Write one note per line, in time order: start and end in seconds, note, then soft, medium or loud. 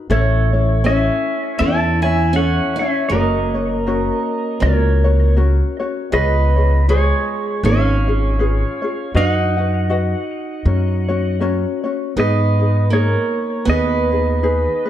0.00 0.10 F#4 medium
0.00 0.10 B4 medium
0.10 1.08 A1 medium
0.10 0.81 A3 medium
0.10 0.53 C#4 medium
0.10 0.53 E4 medium
0.10 0.53 A4 medium
0.10 0.82 A4 medium
0.10 0.52 C#5 medium
0.10 0.87 C#5 medium
0.53 0.85 C#4 soft
0.53 0.85 E4 soft
0.53 0.85 C#5 soft
0.84 1.56 C#4 medium
0.84 1.61 C#4 medium
0.84 1.61 E4 medium
0.84 1.60 A4 medium
0.84 1.62 C#5 medium
0.84 1.61 E5 medium
0.88 1.58 C#5 medium
1.59 2.58 E2 loud
1.59 2.04 C#4 medium
1.59 2.00 E4 medium
1.59 2.04 E4 medium
1.59 2.04 A4 medium
1.59 2.01 E5 medium
1.59 2.02 A5 medium
1.63 2.03 C#5 medium
2.02 2.35 C#4 soft
2.02 2.33 E4 medium
2.02 2.35 E4 medium
2.02 2.36 C#5 medium
2.02 2.34 E5 medium
2.02 2.36 G#5 medium
2.33 2.74 C#4 medium
2.33 2.79 C#4 medium
2.33 2.79 E4 medium
2.33 2.79 A4 medium
2.33 2.76 F#5 medium
2.37 2.78 C#5 medium
2.76 3.07 C#4 medium
2.76 3.11 C#5 medium
2.76 3.08 E5 medium
2.81 3.11 C#4 soft
2.81 3.12 E4 medium
2.81 3.10 C#5 medium
3.09 4.09 F#1 medium
3.09 4.57 A#3 medium
3.09 3.55 C#4 medium
3.09 3.55 F#4 medium
3.09 3.54 A#4 medium
3.09 4.58 A#4 medium
3.09 4.65 D#5 medium
3.13 3.53 C#5 medium
3.54 3.86 C#4 soft
3.54 3.86 F#4 soft
3.54 3.87 C#5 medium
3.87 4.62 C#4 medium
3.87 4.62 F#4 medium
3.87 4.60 A#4 medium
3.87 4.63 C#5 medium
4.60 5.60 C#2 loud
4.60 5.33 A#3 medium
4.60 5.05 C#4 medium
4.60 5.04 F#4 medium
4.60 5.05 A#4 medium
4.60 5.34 C#5 medium
4.60 5.03 C#5 medium
4.64 5.35 A#4 medium
5.04 5.36 C#4 soft
5.04 5.36 F#4 soft
5.04 5.36 C#5 medium
5.36 5.81 C#4 medium
5.36 5.79 F#4 medium
5.36 5.80 A#4 medium
5.36 5.78 C#5 medium
5.80 6.12 C#4 soft
5.80 6.12 F#4 medium
5.80 6.12 C#5 medium
6.12 7.11 C#2 medium
6.12 6.84 B3 medium
6.12 6.56 F4 medium
6.12 6.56 G#4 medium
6.12 6.56 B4 medium
6.12 6.86 B4 medium
6.12 6.55 C#5 medium
6.12 6.91 D#5 medium
6.56 6.87 F4 soft
6.56 6.88 G#4 soft
6.56 6.88 C#5 medium
6.88 7.60 G#3 medium
6.88 7.63 F4 medium
6.88 7.64 G#4 medium
6.88 7.61 G#4 medium
6.88 7.63 B4 medium
6.88 7.64 C#5 medium
6.88 7.65 C#5 medium
7.63 8.62 G#1 loud
7.63 9.12 C#4 medium
7.63 8.08 F4 medium
7.63 8.07 G#4 medium
7.63 8.07 B4 medium
7.63 8.06 C#5 medium
7.63 9.12 C#5 medium
7.63 9.12 F5 medium
8.07 8.38 F4 soft
8.07 8.39 G#4 medium
8.07 8.39 C#5 medium
8.39 8.83 F4 medium
8.39 8.82 G#4 medium
8.39 8.83 B4 medium
8.39 8.81 C#5 medium
8.82 9.15 F4 medium
8.82 9.15 G#4 medium
8.82 9.15 C#5 medium
9.14 10.13 F#2 medium
9.14 11.39 D#4 medium
9.14 9.58 F#4 medium
9.14 9.57 B4 medium
9.14 9.58 D#5 medium
9.14 11.38 D#5 medium
9.14 9.56 F#5 medium
9.14 11.38 F#5 loud
9.57 9.88 F#4 soft
9.57 9.89 B4 soft
9.57 9.90 F#5 soft
9.89 10.66 F#4 medium
9.89 10.66 B4 medium
9.89 10.65 D#5 medium
9.89 10.66 F#5 medium
10.65 11.64 F#2 loud
10.65 11.09 C#4 medium
10.65 11.08 F#4 medium
10.65 11.09 A#4 medium
10.65 11.07 C#5 medium
11.08 11.40 C#4 medium
11.08 11.41 F#4 medium
11.08 11.41 C#5 medium
11.40 11.85 C#4 medium
11.40 11.84 F#4 medium
11.40 11.84 A#4 medium
11.40 11.82 C#5 medium
11.84 12.17 C#4 soft
11.84 12.17 F#4 soft
11.84 12.17 C#5 medium
12.16 13.15 G#2 medium
12.16 12.88 B3 medium
12.16 12.60 D#4 medium
12.16 12.59 G#4 medium
12.16 12.58 B4 medium
12.16 12.90 B4 medium
12.16 12.96 D#5 medium
12.59 12.91 D#4 soft
12.59 12.92 G#4 soft
12.59 12.91 B4 soft
12.90 13.63 A#3 medium
12.90 13.66 D#4 medium
12.90 13.68 G#4 medium
12.90 13.68 A#4 medium
12.90 13.70 C#5 medium
12.95 13.65 A#4 medium
13.65 14.65 D#2 loud
13.65 14.90 B3 medium
13.65 14.11 D#4 medium
13.65 14.11 G#4 medium
13.65 14.10 B4 medium
13.70 14.90 B4 medium
13.70 14.90 D#5 medium
14.11 14.42 D#4 soft
14.11 14.42 G#4 soft
14.11 14.42 B4 medium
14.43 14.86 D#4 medium
14.43 14.85 G#4 medium
14.43 14.84 B4 medium
14.86 14.90 G#4 medium
14.86 14.90 B4 medium